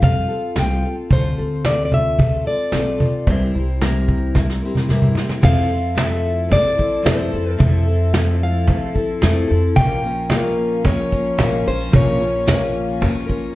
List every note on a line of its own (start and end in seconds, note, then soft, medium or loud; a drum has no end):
0.00 0.25 F2 medium
0.00 0.28 G3 medium
0.00 0.29 C4 medium
0.00 0.29 F4 medium
0.00 0.27 A4 medium
0.00 0.59 F5 medium
0.00 kick medium
0.00 cajon bass medium
0.28 0.55 C4 soft
0.28 0.56 F4 soft
0.28 0.56 A4 soft
0.56 0.82 C2 medium
0.56 0.83 F3 medium
0.56 0.83 G3 medium
0.56 0.83 C4 medium
0.56 0.84 F4 medium
0.56 0.81 A4 medium
0.56 0.95 G5 medium
0.56 snare medium
0.56 cajon slap medium
0.82 1.10 C4 soft
0.82 1.10 F4 soft
0.82 1.10 A4 soft
0.97 cajon slap soft
1.10 1.36 D2 medium
1.10 1.37 D3 medium
1.10 1.38 A3 medium
1.10 1.38 C4 medium
1.10 1.38 F4 medium
1.10 1.37 A4 medium
1.10 1.62 C5 medium
1.10 cajon bass medium
1.10 kick medium
1.38 2.43 D2 medium
1.38 1.64 C4 soft
1.38 1.64 F4 soft
1.38 1.64 A4 soft
1.65 2.19 D3 medium
1.65 2.17 A3 medium
1.65 2.19 C4 medium
1.65 2.19 F4 medium
1.65 2.19 A4 medium
1.65 1.84 D5 medium
1.65 cajon slap medium
1.65 snare medium
1.85 1.92 D5 medium
1.92 2.47 E5 medium
1.92 cajon bass medium
2.06 cajon slap soft
2.18 2.46 A3 medium
2.18 2.45 C4 medium
2.18 2.45 F4 medium
2.18 2.43 A4 medium
2.18 kick medium
2.18 cajon bass medium
2.45 2.73 C4 soft
2.45 2.73 F4 soft
2.45 2.72 A4 medium
2.45 3.30 D5 medium
2.72 2.99 B1 medium
2.72 3.00 D3 medium
2.72 3.00 A3 medium
2.72 3.00 C4 medium
2.72 2.99 F4 medium
2.72 2.97 A4 medium
2.72 cajon slap medium
2.72 snare medium
2.98 3.28 C4 soft
2.98 3.27 F4 soft
2.98 3.26 A4 soft
2.98 cajon bass medium
3.14 cajon slap soft
3.27 3.53 C2 medium
3.27 3.54 C3 medium
3.27 3.54 E3 medium
3.27 3.55 G3 medium
3.27 3.55 C4 medium
3.27 3.54 E4 medium
3.27 3.52 A#4 medium
3.27 3.81 C5 medium
3.27 kick medium
3.27 cajon bass medium
3.27 cajon slap soft
3.54 4.59 C2 medium
3.54 3.81 G3 soft
3.54 3.82 C4 soft
3.54 3.82 E4 soft
3.54 3.81 A#4 soft
3.54 cajon slap soft
3.81 4.35 C3 medium
3.81 4.36 E3 medium
3.81 4.33 G3 medium
3.81 4.33 C4 medium
3.81 4.34 E4 medium
3.81 4.59 A#4 medium
3.81 4.35 A#4 medium
3.81 cajon slap medium
3.81 snare medium
4.08 kick medium
4.08 cajon bass medium
4.08 cajon slap soft
4.23 cajon slap soft
4.34 4.62 G3 soft
4.34 4.62 C4 medium
4.34 4.62 E4 medium
4.34 4.61 A#4 medium
4.34 cajon bass medium
4.34 kick medium
4.34 cajon slap soft
4.34 snare soft
4.50 snare soft
4.63 4.89 G3 soft
4.63 4.89 C4 medium
4.63 4.90 E4 soft
4.63 4.90 A#4 medium
4.63 cajon slap soft
4.75 cajon bass soft
4.75 snare medium
4.89 5.16 G2 medium
4.89 5.17 C3 medium
4.89 5.17 E3 medium
4.89 5.17 G3 medium
4.89 5.17 C4 medium
4.89 5.15 E4 medium
4.89 5.15 A#4 medium
4.89 cajon bass medium
4.89 snare medium
5.02 cajon bass medium
5.15 5.41 G3 soft
5.15 5.41 C4 soft
5.15 5.41 E4 soft
5.15 5.43 A#4 medium
5.15 cajon slap medium
5.15 snare medium
5.29 cajon slap medium
5.29 snare medium
5.42 6.48 F2 loud
5.42 5.70 F3 medium
5.42 13.55 F3 medium
5.42 5.70 A3 medium
5.42 5.70 C4 medium
5.42 9.73 C4 medium
5.42 5.68 E4 medium
5.42 5.67 A4 medium
5.42 9.73 A4 medium
5.42 5.99 F5 medium
5.42 cajon bass medium
5.42 kick loud
5.42 crash medium
5.68 5.94 C4 soft
5.68 5.95 E4 soft
5.68 5.96 A4 soft
5.94 6.54 F3 medium
5.94 6.48 A3 medium
5.94 6.49 C4 medium
5.94 6.49 E4 medium
5.94 6.50 A4 medium
5.94 snare loud
5.94 cajon slap loud
6.00 6.52 E5 medium
6.49 6.78 A3 medium
6.49 6.77 C4 medium
6.49 6.76 E4 medium
6.49 6.75 A4 medium
6.49 7.08 D5 loud
6.49 cajon bass loud
6.49 kick medium
6.49 cajon slap soft
6.76 7.02 C4 medium
6.76 7.03 E4 medium
6.76 7.03 A4 medium
6.76 kick medium
7.03 7.32 F2 loud
7.03 7.32 F3 medium
7.03 7.32 A3 medium
7.03 7.32 C4 medium
7.03 7.31 E4 medium
7.03 7.30 A4 medium
7.03 snare loud
7.03 cajon slap loud
7.08 7.51 C5 medium
7.31 7.59 F2 medium
7.31 7.57 C4 soft
7.31 7.57 E4 soft
7.31 7.58 A4 medium
7.31 cajon slap soft
7.51 7.63 A#4 medium
7.57 8.65 F2 loud
7.57 7.86 F3 medium
7.57 7.86 A3 medium
7.57 7.87 C4 medium
7.57 7.86 E4 medium
7.57 7.84 A4 loud
7.57 8.38 E5 medium
7.57 cajon bass medium
7.57 kick loud
7.86 8.13 C4 soft
7.86 8.13 E4 soft
7.86 8.14 A4 soft
8.13 8.72 F3 medium
8.13 8.66 A3 medium
8.13 8.67 C4 medium
8.13 8.68 E4 medium
8.13 8.69 A4 medium
8.13 snare loud
8.13 cajon slap medium
8.43 8.93 F5 medium
8.67 8.95 A3 medium
8.67 8.96 C4 medium
8.67 8.95 E4 medium
8.67 8.94 A4 medium
8.67 cajon bass medium
8.67 kick medium
8.67 cajon slap soft
8.95 9.22 C4 medium
8.95 9.22 E4 medium
8.95 9.22 A4 medium
8.95 kick medium
9.21 9.49 F2 loud
9.21 9.49 F3 medium
9.21 9.50 A3 loud
9.21 9.50 C4 medium
9.21 9.49 E4 loud
9.21 9.46 A4 medium
9.21 cajon slap medium
9.21 snare medium
9.47 9.76 F2 medium
9.47 9.78 C4 medium
9.47 9.77 E4 medium
9.47 9.76 A4 medium
9.47 cajon slap soft
9.76 10.82 A#1 medium
9.76 13.55 A#2 medium
9.76 10.04 A#2 medium
9.76 10.04 F3 medium
9.76 10.05 A#3 medium
9.76 13.55 C#4 medium
9.76 10.04 C#4 medium
9.76 10.03 F4 medium
9.76 10.02 A#4 medium
9.76 10.27 G5 loud
9.76 cajon bass medium
9.76 kick medium
10.03 10.29 A#3 soft
10.03 10.30 C#4 soft
10.03 10.30 F4 medium
10.03 10.30 A#4 medium
10.29 10.84 A#2 medium
10.29 10.85 F3 medium
10.29 10.83 A#3 medium
10.29 10.83 C#4 medium
10.29 10.84 F4 medium
10.29 10.86 A#4 medium
10.29 10.86 F5 medium
10.29 cajon slap loud
10.29 snare loud
10.84 11.12 A#3 medium
10.84 11.12 C#4 medium
10.84 11.11 F4 medium
10.84 11.10 A#4 medium
10.84 11.63 C#5 medium
10.84 cajon bass loud
10.84 kick medium
10.84 cajon slap soft
11.11 11.38 A#3 medium
11.11 11.37 C#4 medium
11.11 11.39 F4 medium
11.11 11.38 A#4 medium
11.11 kick medium
11.37 11.66 A#1 loud
11.37 11.66 A#2 medium
11.37 11.66 F3 medium
11.37 11.66 A#3 medium
11.37 11.65 C#4 medium
11.37 11.64 F4 medium
11.37 11.63 A#4 medium
11.37 cajon slap loud
11.37 snare medium
11.64 11.93 A#1 medium
11.64 11.91 A#3 soft
11.64 11.92 C#4 soft
11.64 11.92 F4 medium
11.64 11.92 A#4 medium
11.64 11.95 C5 medium
11.64 cajon slap soft
11.92 12.98 A#1 loud
11.92 12.20 A#2 medium
11.92 12.20 F3 medium
11.92 12.20 A#3 medium
11.92 12.21 C#4 medium
11.92 12.20 F4 medium
11.92 12.19 A#4 medium
11.92 cajon bass loud
11.92 kick loud
11.96 13.55 C#5 medium
12.07 cajon slap soft
12.20 12.46 A#3 soft
12.20 12.46 C#4 soft
12.20 12.48 F4 medium
12.20 12.47 A#4 medium
12.20 cajon slap soft
12.46 13.01 A#2 medium
12.46 13.02 F3 medium
12.46 13.00 A#3 medium
12.46 13.00 C#4 medium
12.46 13.01 F4 medium
12.46 13.02 A#4 medium
12.46 cajon bass medium
12.46 snare medium
12.46 cajon slap loud
12.76 cajon slap soft
12.90 cajon slap soft
13.00 13.28 A#3 medium
13.00 13.27 C#4 medium
13.00 13.26 F4 medium
13.00 13.25 A#4 medium
13.00 cajon bass loud
13.00 kick medium
13.00 cajon slap soft
13.27 13.53 A#3 medium
13.27 13.54 C#4 medium
13.27 13.54 F4 medium
13.27 13.54 A#4 medium
13.27 kick medium
13.27 cajon slap soft